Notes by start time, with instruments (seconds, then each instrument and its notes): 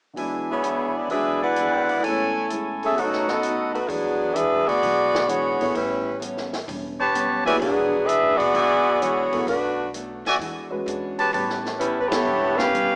0.14 grand piano E2 E3 F#3, steel-string acoustic guitar E3 B3, trumpet section D4 E4 B4 G#5, open hi-hat
0.18 grand piano G#3 D4, steel-string acoustic guitar D4 G#4
0.51 saxophone section B3 E4 G#4 C#5
0.62 steel-string acoustic guitar E3 B3 D4 G#4, closed hi-hat
0.96 saxophone section B3 E4 G#4 D5
1.08 grand piano E2 E3 F#3 G#3, steel-string acoustic guitar E3 B3 D4 G#4, saxophone section D4 G#4 B4 E5, trumpet section E4 B4 D5 G#5, open hi-hat
1.13 grand piano D4
1.43 saxophone section E4 B4 D5 F#5
1.56 steel-string acoustic guitar E3 B3 D4 G#4, closed hi-hat
1.89 open hi-hat
1.99 grand piano A2 E3
2.03 steel-string acoustic guitar A2 G#3 C#4, grand piano A3 B3, trumpet section E4 A4 C#5 G#5, saxophone section E4 A4 C#5 G#5, open hi-hat
2.08 grand piano C#4, steel-string acoustic guitar E4
2.50 steel-string acoustic guitar A2 G#3 C#4 E4, closed hi-hat
2.83 saxophone section C#4 G#4 A4 E5, open hi-hat
2.91 grand piano B2 F#3
2.96 steel-string acoustic guitar B2 F#3 A3 D#4, grand piano A3 C#4, saxophone section A3 D#4 F#4 C#5, trumpet section D#4 A4 B4 F#5, open hi-hat
3.02 grand piano D#4
3.13 snare
3.28 saxophone section B3 F#4 A4 D#5, snare
3.43 steel-string acoustic guitar B2 F#3 A3 D#4, closed hi-hat
3.74 saxophone section A3 D#4 F#4 B4, open hi-hat
3.88 upright bass E2, steel-string acoustic guitar E3 G#3 D4 F#4, saxophone section F#3 B3 D4 G#4, open hi-hat
4.35 steel-string acoustic guitar E3 G#3 D4 F#4, saxophone section D4 G#4 B4 E5, closed hi-hat
4.52 upright bass F#2
4.67 upright bass D2, saxophone section B3 F#4 G#4 D5, open hi-hat
4.82 upright bass B1, steel-string acoustic guitar E3 G#3 D4 F#4, open hi-hat
5.15 snare
5.27 steel-string acoustic guitar E3 G#3 D4 F#4, saxophone section B3 F#4 G#4 C#5, closed hi-hat
5.61 upright bass A#1, grand piano B3 E4 A4 C#5, open hi-hat
5.74 upright bass A1, steel-string acoustic guitar A2 G3 B3 C#4, saxophone section G3 C#4 E4 B4, open hi-hat
6.20 steel-string acoustic guitar A2 G3 B3 C#4, closed hi-hat
6.37 snare
6.53 snare, open hi-hat
6.66 upright bass E1, steel-string acoustic guitar A2 G3 B3 C#4, open hi-hat
7.00 trumpet section G4 B4 C#5 A5
7.14 steel-string acoustic guitar A2 G3 B3 C#4, closed hi-hat
7.29 upright bass B1
7.45 upright bass D#2, grand piano F#3 B3 E4 G#4, saxophone section G3 C#4 E4 B4, trumpet section F#4 D5 E5 G#5, open hi-hat
7.60 upright bass E1, steel-string acoustic guitar E3 G#3 D4 F#4, saxophone section F#3 B3 D4 G#4, open hi-hat
8.06 steel-string acoustic guitar E3 G#3 D4 F#4, saxophone section D4 G#4 B4 E5, closed hi-hat
8.23 upright bass F#1
8.37 upright bass F1, saxophone section B3 F#4 G#4 D5, open hi-hat
8.53 upright bass B1, steel-string acoustic guitar E3 G#3 D4 F#4, trumpet section F#4 D5 E5 G#5, open hi-hat
9.00 steel-string acoustic guitar E3 G#3 D4 F#4, saxophone section B3 F#4 G#4 C#5, closed hi-hat
9.32 upright bass A1, grand piano F#3 B3 E4 A4, open hi-hat
9.47 upright bass B1, steel-string acoustic guitar B2 F#3 A3 D4, saxophone section A3 D4 F#4 B4, open hi-hat
9.94 steel-string acoustic guitar B2 F#3 A3 D4, closed hi-hat
10.25 upright bass D2, trumpet section F#4 D5 E5 G#5, snare, open hi-hat
10.39 upright bass E2, steel-string acoustic guitar E3 G#3 D4 F#4, open hi-hat
10.70 grand piano G#3 C#4 F#4 B4
10.86 upright bass E2, steel-string acoustic guitar E3 G#3 D4 F#4, closed hi-hat
11.18 trumpet section G4 B4 C#5 A5, open hi-hat
11.33 upright bass A1, steel-string acoustic guitar A2 G3 B3 C#4, trumpet section G4 B4 C#5 A5, open hi-hat
11.50 snare
11.65 snare
11.79 steel-string acoustic guitar A2 G3 B3 C#4, saxophone section G3 C#4 E4 B4, closed hi-hat
12.01 saxophone section B4
12.09 saxophone section B3 E4 G4 C#5, grand piano B3 E4, snare, ride
12.13 grand piano A4 C#5
12.25 upright bass E1, steel-string acoustic guitar A2 G3 B3
12.30 steel-string acoustic guitar C#4
12.57 grand piano B3 E4 A4 B4, saxophone section C#4 G4 B4 F5, snare
12.73 steel-string acoustic guitar A2 G3 B3 C#4, closed hi-hat